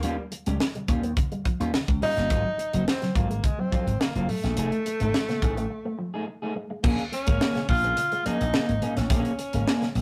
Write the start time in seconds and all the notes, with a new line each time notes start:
Already playing: A#3
0.03 D#2 G3 A#3 C#4 F4, closed hi-hat
0.18 muted clean electric guitar stroke
0.32 muted clean electric guitar stroke, closed hi-hat
0.46 C#2 G3 C#4 G4, closed hi-hat, high conga
0.60 muted clean electric guitar stroke, snare
0.75 G3, closed hi-hat, muted conga, high conga
0.88 D#2 G3 C#4 F4, muted clean electric guitar stroke, kick, closed hi-hat, low conga
1.03 A#3, muted clean electric guitar stroke, closed hi-hat
1.17 muted clean electric guitar stroke, kick, closed hi-hat, muted conga, high conga
1.32 G3, muted clean electric guitar stroke, closed hi-hat
1.45 F3, muted slap bass stroke, kick, closed hi-hat
1.60 D#2 G3 C#4 F4, closed hi-hat
1.73 muted clean electric guitar stroke, muted slap bass stroke, snare, muted conga, high conga
1.88 C#2, muted clean electric guitar stroke, kick, closed hi-hat
2.01 G3 C#4 D#4 F4, open hi-hat, low conga
2.16 G1 G3 A#3 C#4 F4, snare, closed hi-hat
2.29 G#1 F#3 G#3 C4 F4, kick, closed hi-hat
2.45 muted clean electric guitar stroke, muted conga
2.58 muted clean electric guitar stroke, closed hi-hat
2.73 F#1 F#3 C4 F#4, closed hi-hat, high conga
2.88 C4, snare
3.02 F#3, snare, closed hi-hat, muted conga, high conga
3.15 G#1 F#3 A#3 C4 F4, muted clean electric guitar stroke, kick, closed hi-hat, low conga
3.30 G#3, muted clean electric guitar stroke, closed hi-hat
3.43 G#3, muted clean electric guitar stroke, kick, closed hi-hat, high conga
3.59 F#3 C4, muted clean electric guitar stroke, muted conga
3.72 F3 F#3 C4 F4, muted slap bass stroke, kick, closed hi-hat
3.87 G#1, muted clean electric guitar stroke, closed hi-hat
4.00 A#3, muted clean electric guitar stroke, snare, muted conga, high conga
4.15 F#1 F#3 A#3 C4 F4, closed hi-hat
4.29 F#3 A3, muted clean electric guitar stroke, open hi-hat, low conga
4.44 A#1 G#3, muted clean electric guitar stroke, snare, closed hi-hat
4.57 F1 F3 A3 D#4 G#4, closed hi-hat
4.72 muted clean electric guitar stroke, closed hi-hat
4.86 muted clean electric guitar stroke, closed hi-hat
5.00 G#1 A3 D#4 A4, closed hi-hat, high conga
5.14 muted clean electric guitar stroke, snare
5.29 A#3, snare, closed hi-hat, muted conga, high conga
5.42 A1 A3 D#4 G#4, muted clean electric guitar stroke, kick, closed hi-hat, low conga
5.57 A3, muted clean electric guitar stroke, closed hi-hat
5.70 muted clean electric guitar stroke
5.85 A3, muted clean electric guitar stroke
5.99 F3
6.14 A3 D#4 G#4
6.27 muted clean electric guitar stroke
6.42 A3 D#4 G#4
6.56 G#3, muted clean electric guitar stroke
6.70 G#3, muted clean electric guitar stroke
6.83 A#1 A#3 C#4 G#4, kick, crash
6.99 closed hi-hat
7.12 C#4, muted clean electric guitar stroke, closed hi-hat
7.27 G#1 G#3 A#3 C#4 A#4, kick, closed hi-hat, high conga
7.40 A#3 C#4 G#4, snare, muted conga
7.55 G#3, snare, closed hi-hat, muted conga, high conga
7.69 A#1 F4, muted clean electric guitar stroke, kick, open hi-hat, low conga
7.84 A#3 C#4 G#4, closed hi-hat
7.97 muted clean electric guitar stroke, closed hi-hat, muted conga, high conga
8.12 G#3, muted clean electric guitar stroke, closed hi-hat, muted conga
8.25 F3 A#3 C#4 D#4 G#4, muted slap bass stroke, closed hi-hat
8.40 A#1, muted clean electric guitar stroke, closed hi-hat
8.53 A#3 C#4 G#4, muted clean electric guitar stroke, muted slap bass stroke, snare, muted conga, high conga
8.69 G#1, muted clean electric guitar stroke, closed hi-hat
8.82 G#3 A#3 C#4 G#4, closed hi-hat, low conga
8.97 A1 A#3 C#4, muted clean electric guitar stroke, snare, closed hi-hat
9.10 A#1 A#3 C#4 G#4, kick, closed hi-hat, muted conga
9.25 closed hi-hat, muted conga
9.38 muted clean electric guitar stroke, closed hi-hat
9.53 G#1 G#3 A#3 C#4 A#4, closed hi-hat, high conga
9.67 A#3 C#4 G#4, snare
9.81 G#3, snare, closed hi-hat, high conga
9.95 A#1, muted clean electric guitar stroke, open hi-hat, low conga